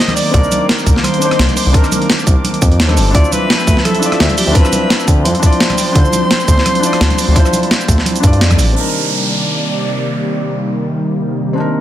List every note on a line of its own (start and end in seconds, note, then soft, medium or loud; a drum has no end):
0.00 3.11 D#3 medium
0.00 3.11 A#3 medium
0.00 3.17 A#3 medium
0.00 0.30 C4 loud
0.00 0.33 D4 medium
0.00 0.35 D#4 medium
0.00 0.37 A#4 loud
0.00 1.25 C5 loud
0.00 0.15 D#5 loud
0.00 3.11 D6 medium
0.08 cross-stick medium
0.08 closed hi-hat soft
0.08 high conga medium
0.16 0.32 D5 loud
0.16 open hi-hat medium
0.16 cabasa medium
0.30 0.42 C2 loud
0.30 1.17 C4 loud
0.30 1.19 D4 medium
0.30 0.66 D5 loud
0.30 kick loud
0.30 closed hi-hat medium
0.35 1.20 D#4 medium
0.35 1.21 A#4 loud
0.44 cabasa soft
0.52 closed hi-hat medium
0.52 high conga medium
0.52 cabasa medium
0.68 1.05 A#4 medium
0.68 snare loud
0.68 closed hi-hat medium
0.79 cabasa soft
0.86 0.95 C2 medium
0.86 kick loud
0.86 closed hi-hat medium
0.86 cabasa medium
0.96 snare soft
1.03 1.56 C5 loud
1.03 cross-stick soft
1.03 closed hi-hat medium
1.03 high conga medium
1.14 closed hi-hat soft
1.18 1.69 C4 medium
1.18 1.71 D4 medium
1.18 closed hi-hat medium
1.18 cabasa medium
1.23 1.73 D#4 medium
1.23 1.74 C5 medium
1.31 cross-stick medium
1.31 closed hi-hat soft
1.39 1.48 C2 loud
1.39 snare loud
1.39 closed hi-hat medium
1.49 closed hi-hat soft
1.49 high conga medium
1.56 1.75 C5 medium
1.56 open hi-hat medium
1.56 cabasa medium
1.66 1.73 C2 medium
1.71 2.58 C4 loud
1.71 2.59 D4 medium
1.71 2.27 A#4 medium
1.71 kick loud
1.71 closed hi-hat medium
1.75 2.61 D#4 medium
1.75 2.62 A#4 loud
1.84 cross-stick soft
1.84 cabasa soft
1.92 closed hi-hat medium
1.92 high conga loud
1.92 cabasa medium
2.02 closed hi-hat soft
2.10 snare loud
2.10 closed hi-hat medium
2.19 cabasa soft
2.27 2.35 C2 medium
2.27 kick loud
2.27 closed hi-hat medium
2.27 cabasa medium
2.44 closed hi-hat medium
2.44 high conga medium
2.54 closed hi-hat soft
2.62 2.81 F2 medium
2.62 kick loud
2.62 closed hi-hat medium
2.62 cabasa medium
2.72 closed hi-hat soft
2.79 2.99 D#2 medium
2.79 snare loud
2.79 closed hi-hat medium
2.87 3.12 C4 medium
2.87 3.09 D4 medium
2.87 3.13 D#4 medium
2.87 3.14 A4 loud
2.87 cross-stick soft
2.87 closed hi-hat soft
2.87 high conga loud
2.97 3.13 G1 medium
2.97 open hi-hat medium
2.97 cabasa medium
3.11 3.23 D2 loud
3.11 3.98 D4 loud
3.11 4.00 E4 medium
3.11 3.34 D5 loud
3.11 kick loud
3.11 closed hi-hat medium
3.15 8.72 F3 medium
3.15 8.72 C4 medium
3.15 4.02 C4 loud
3.15 4.01 F4 medium
3.15 5.93 E5 medium
3.24 cabasa soft
3.32 3.85 B4 loud
3.32 closed hi-hat medium
3.32 high conga medium
3.32 cabasa medium
3.50 snare loud
3.50 closed hi-hat medium
3.60 cabasa soft
3.67 3.76 D2 medium
3.67 kick loud
3.67 closed hi-hat medium
3.67 cabasa medium
3.77 snare soft
3.85 4.34 A4 loud
3.85 cross-stick soft
3.85 closed hi-hat medium
3.85 high conga medium
3.95 closed hi-hat soft
3.99 4.50 D4 medium
3.99 4.53 E4 medium
3.99 closed hi-hat medium
3.99 cabasa medium
4.04 4.54 F4 medium
4.04 4.55 D5 medium
4.12 cross-stick medium
4.12 closed hi-hat soft
4.20 4.28 D2 loud
4.20 snare loud
4.20 closed hi-hat medium
4.29 closed hi-hat soft
4.29 high conga medium
4.38 4.57 G4 medium
4.38 open hi-hat medium
4.38 cabasa medium
4.47 4.54 D2 medium
4.52 5.38 D4 loud
4.52 5.40 E4 medium
4.52 5.08 B4 loud
4.52 kick loud
4.52 closed hi-hat medium
4.56 5.43 C4 loud
4.56 5.41 F4 medium
4.65 cross-stick soft
4.65 cabasa soft
4.73 closed hi-hat medium
4.73 high conga medium
4.73 cabasa medium
4.90 snare loud
4.90 closed hi-hat medium
5.00 cabasa soft
5.08 5.27 D2 medium
5.08 kick loud
5.08 closed hi-hat medium
5.08 cabasa medium
5.25 5.34 F2 medium
5.25 8.37 C5 loud
5.25 closed hi-hat medium
5.25 high conga medium
5.35 closed hi-hat soft
5.40 5.91 D4 medium
5.40 5.93 E4 medium
5.40 kick loud
5.40 closed hi-hat medium
5.40 cabasa medium
5.44 5.94 F4 medium
5.44 5.95 D5 loud
5.52 closed hi-hat soft
5.60 snare loud
5.60 closed hi-hat medium
5.70 cross-stick soft
5.70 closed hi-hat soft
5.70 high conga medium
5.78 open hi-hat medium
5.78 cabasa medium
5.92 6.04 D2 loud
5.92 6.78 D4 loud
5.92 6.80 E4 medium
5.92 kick loud
5.92 closed hi-hat medium
5.97 6.82 F4 medium
5.97 6.83 C5 loud
6.05 cabasa soft
6.13 closed hi-hat medium
6.13 high conga medium
6.13 cabasa medium
6.31 snare loud
6.31 closed hi-hat loud
6.40 cabasa soft
6.48 6.57 D2 medium
6.48 kick loud
6.48 closed hi-hat medium
6.48 cabasa medium
6.58 snare soft
6.66 cross-stick soft
6.66 closed hi-hat medium
6.66 high conga medium
6.75 closed hi-hat soft
6.80 7.31 D4 medium
6.80 7.33 E4 medium
6.80 closed hi-hat medium
6.80 cabasa medium
6.84 7.34 F4 medium
6.84 7.36 D5 medium
6.93 cross-stick medium
6.93 closed hi-hat soft
7.01 7.09 D2 loud
7.01 snare loud
7.01 closed hi-hat loud
7.10 closed hi-hat soft
7.10 high conga medium
7.18 open hi-hat medium
7.18 cabasa medium
7.28 7.35 D2 medium
7.32 8.19 D4 loud
7.32 8.21 E4 medium
7.32 kick loud
7.32 closed hi-hat medium
7.37 8.22 F4 medium
7.37 8.23 C5 loud
7.46 cross-stick soft
7.46 cabasa soft
7.53 closed hi-hat medium
7.53 high conga medium
7.53 cabasa medium
7.63 closed hi-hat soft
7.71 snare loud
7.71 closed hi-hat medium
7.81 cabasa soft
7.88 7.97 D2 medium
7.88 kick loud
7.88 closed hi-hat medium
7.88 cabasa medium
7.98 snare soft
8.06 closed hi-hat loud
8.06 high conga medium
8.16 closed hi-hat soft
8.16 cabasa soft
8.20 8.43 G2 medium
8.20 8.73 D4 medium
8.20 8.74 E4 medium
8.20 kick loud
8.20 closed hi-hat medium
8.20 cabasa medium
8.25 8.75 F4 medium
8.25 8.76 D5 loud
8.33 closed hi-hat soft
8.41 8.60 F2 medium
8.41 snare loud
8.41 closed hi-hat loud
8.50 kick medium
8.50 cross-stick soft
8.50 closed hi-hat soft
8.50 high conga medium
8.50 cabasa soft
8.59 8.75 A1 medium
8.59 open hi-hat medium
8.59 cabasa medium
8.73 11.81 C3 medium
8.73 11.81 D#3 medium
8.73 11.81 G3 medium
8.73 11.81 A#3 medium
8.73 11.52 C4 medium
8.73 11.54 D4 medium
8.73 11.54 D5 medium
8.73 downlifter medium
8.77 11.56 D#4 medium
8.77 11.57 A#4 medium
11.53 11.81 C4 medium
11.53 11.81 D4 medium
11.58 11.81 D#4 medium
11.58 11.81 A#4 medium